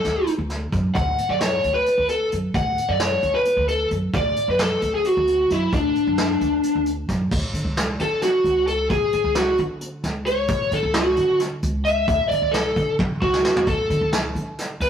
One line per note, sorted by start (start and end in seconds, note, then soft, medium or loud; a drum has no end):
0.00 0.29 A4 medium
0.04 0.26 D2 medium
0.04 snare soft
0.04 closed hi-hat soft
0.27 closed hi-hat medium
0.38 0.70 D2 medium
0.50 snare soft
0.50 closed hi-hat medium
0.72 0.94 F#2 medium
0.72 kick medium
0.72 closed hi-hat medium
0.95 1.17 D2 loud
0.95 1.30 F#5 loud
0.95 kick medium
0.95 closed hi-hat medium
1.18 closed hi-hat medium
1.29 1.61 F#2 medium
1.29 1.40 D5 medium
1.41 1.72 C#5 medium
1.41 snare loud
1.41 closed hi-hat medium
1.64 1.85 D2 medium
1.64 closed hi-hat soft
1.74 2.06 B4 medium
1.86 closed hi-hat medium
1.98 2.30 D2 medium
2.08 2.30 A4 medium
2.08 closed hi-hat medium
2.32 2.53 F#2 medium
2.32 closed hi-hat medium
2.54 2.76 D2 loud
2.54 2.90 F#5 loud
2.54 kick medium
2.54 closed hi-hat medium
2.78 closed hi-hat medium
2.88 3.20 F#2 medium
2.88 3.01 D5 medium
3.00 3.35 C#5 medium
3.00 snare loud
3.00 closed hi-hat medium
3.23 3.44 D2 medium
3.23 closed hi-hat soft
3.35 3.68 B4 medium
3.45 closed hi-hat medium
3.57 3.89 D2 medium
3.68 3.89 A4 medium
3.68 closed hi-hat medium
3.91 4.12 F#2 medium
3.91 closed hi-hat medium
4.14 4.35 D2 loud
4.14 4.50 D5 medium
4.14 kick loud
4.14 closed hi-hat medium
4.36 closed hi-hat medium
4.48 4.80 F#2 medium
4.48 4.60 B4 medium
4.59 4.94 A4 loud
4.59 snare loud
4.59 closed hi-hat medium
4.82 5.03 D2 medium
4.82 closed hi-hat soft
4.95 5.04 G#4 medium
5.05 5.52 F#4 medium
5.05 closed hi-hat medium
5.17 5.48 D2 medium
5.27 closed hi-hat medium
5.50 5.71 F#2 medium
5.50 5.72 E4 medium
5.50 closed hi-hat medium
5.72 5.94 D2 loud
5.72 6.83 D4 medium
5.72 kick medium
5.72 closed hi-hat medium
5.95 closed hi-hat medium
6.07 6.39 F#2 medium
6.18 snare loud
6.18 closed hi-hat medium
6.41 6.62 D2 medium
6.41 closed hi-hat soft
6.63 closed hi-hat medium
6.75 7.07 D2 medium
6.86 closed hi-hat medium
7.09 7.30 F#2 medium
7.09 kick medium
7.09 snare soft
7.09 closed hi-hat medium
7.31 7.42 D2 medium
7.31 kick loud
7.31 crash medium
7.53 7.64 D3 medium
7.53 closed hi-hat medium
7.64 7.97 C#2 medium
7.77 snare loud
7.77 closed hi-hat medium
8.00 8.42 D3 medium
8.00 8.23 A4 loud
8.00 closed hi-hat medium
8.22 8.67 F#4 medium
8.22 snare soft
8.22 closed hi-hat medium
8.44 8.87 C#2 medium
8.44 closed hi-hat medium
8.67 8.90 A4 medium
8.67 closed hi-hat medium
8.90 9.01 D2 medium
8.90 9.36 G#4 medium
8.90 kick loud
8.90 closed hi-hat medium
9.13 9.24 D3 medium
9.13 closed hi-hat medium
9.24 9.56 C#2 medium
9.35 9.57 F#4 medium
9.35 snare loud
9.35 closed hi-hat medium
9.58 10.01 D3 loud
9.58 closed hi-hat medium
9.81 closed hi-hat medium
10.04 10.46 C#2 medium
10.04 snare soft
10.04 closed hi-hat medium
10.26 10.73 C#5 loud
10.26 closed hi-hat medium
10.48 10.60 D2 loud
10.48 kick loud
10.48 closed hi-hat medium
10.71 10.82 D3 medium
10.71 10.95 A4 medium
10.71 closed hi-hat medium
10.83 11.15 C#2 medium
10.94 11.37 F#4 medium
10.94 snare loud
10.94 closed hi-hat medium
11.17 11.60 D3 medium
11.17 closed hi-hat medium
11.40 snare soft
11.40 closed hi-hat medium
11.63 12.05 C#2 medium
11.63 closed hi-hat medium
11.85 12.28 E5 loud
11.85 closed hi-hat medium
12.08 12.19 D2 loud
12.08 kick medium
12.08 closed hi-hat medium
12.28 12.41 D3 medium
12.28 12.53 D5 medium
12.28 closed hi-hat medium
12.42 12.74 C#2 medium
12.51 12.94 A4 medium
12.51 snare loud
12.51 closed hi-hat medium
12.76 13.19 D3 loud
12.76 kick medium
12.76 closed hi-hat soft
12.99 kick loud
12.99 high tom medium
13.22 13.64 C#2 medium
13.22 13.68 F#4 medium
13.22 kick medium
13.33 snare medium
13.45 snare medium
13.56 floor tom medium
13.67 13.78 D2 loud
13.67 14.09 A4 loud
13.67 kick loud
13.67 closed hi-hat medium
13.90 14.00 D3 medium
13.90 closed hi-hat medium
14.01 14.33 C#2 medium
14.13 snare loud
14.13 closed hi-hat medium
14.35 14.78 D3 medium
14.35 closed hi-hat medium
14.59 snare soft
14.59 closed hi-hat medium
14.80 14.90 C#2 medium
14.80 14.90 B4 medium
14.80 closed hi-hat medium